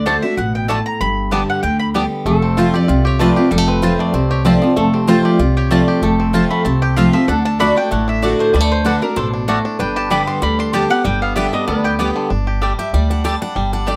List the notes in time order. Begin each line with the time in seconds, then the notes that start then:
Already playing: D2
0.06 D3 A3 D4 F#4 C5 D5 A5
0.22 D4 F#4 E5
0.37 A1 B2 F#5
0.55 G5
0.68 A2 A3 D4 F#4 D5 A5
0.86 A#5
1.00 G1 G2 B5
1.31 D3 G3 B3 D4 G4 D5 G5 A5
1.50 F#5
1.63 D2 D3 G5
1.79 B5
1.94 D3 G3 B3 D4 G4 D5 G5
2.25 F1 F2 A3 A4
2.42 C4
2.57 F3 A3 C4 F4 C5 A5
2.74 C4 F4 G4 D5
2.88 C2 C3 F4
3.05 G4 C#5
3.19 F3 A3 C4 F4 B4 C5 D5 A5
3.36 C4 F4 G4
3.51 F1 F2 G3 A4
3.58 A3
3.68 C4 B4
3.82 F3 A3 C4 F4 C5 A5
3.99 A3 D5
4.13 C2 C3 C4
4.31 G4 C#5
4.45 F3 A3 C4 F4 C5 D5 A5
4.62 F3 C4 F4
4.76 F1 F2 A3 A4
4.94 C4 G4
5.07 F3 A3 C4 F4 C5 A5
5.25 G4 D5
5.39 C2 C3 F4
5.57 G4 C#5
5.71 F3 A3 C4 F4 C5 D5 A5
5.88 G4
6.02 F1 F2 A3 A4
6.20 C4
6.33 F3 A3 C4 F4 C5 A5
6.51 A3 B5
6.65 C2 C3 C4 A5
6.82 G4 G5
6.96 F3 A3 C4 F4 C5 F5 A5
7.13 F3 C4 F4 E5
7.28 D2 D3 D4 A4 F#5
7.45 D4 A5
7.59 D3 A3 D4 F#4 D5 F#5 B5
7.76 D4 F#4 G5
7.91 A1 A2 A3 F#5
8.08 D4 E5
8.22 D3 A3 D4 F#4 D5 F#5
8.39 A3 C5
8.53 D2 D3 G3 B4 D5
8.60 A3
8.72 C5
8.85 D3 A3 D4 F#4 A4 B4 D5 F#5
9.02 D4 F#4 A#4
9.16 A1 B2 D4 A4 C5
9.33 D4
9.48 A2 A3 F#4 D5 F#5
9.65 D4
9.79 G1 G2 D4 B4 G5
9.96 G4 A5
10.10 D3 G3 B3 G4 D5 G5 B5
10.27 D4 C6
10.42 D2 D3 G3 B5
10.59 D4 C6
10.73 D3 G3 B3 G4 D5 G5 A5
10.90 G3 B3 G4 F#5
11.04 G1 G2 G3 G5
11.22 B3 F5
11.36 D3 G3 B3 D4 G4 D5 E5 G5
11.53 G3 B3 G4 D#5
11.68 D2 D3 B3 B4 D5
11.84 G4 G5
11.99 D3 G3 B3 G4 D5 G5
12.16 D3
12.30 G1 D4
12.47 G4
12.62 G3 A3 G4 D5 G5
12.79 G4 E5
12.93 D2 G3 D5
13.10 D4 F#5
13.24 G3 A3 G4 D5 G5 A5
13.42 D4 F#5
13.56 G1 G3 G5
13.73 D4 F#5
13.86 A3 D4 G4 D5 G5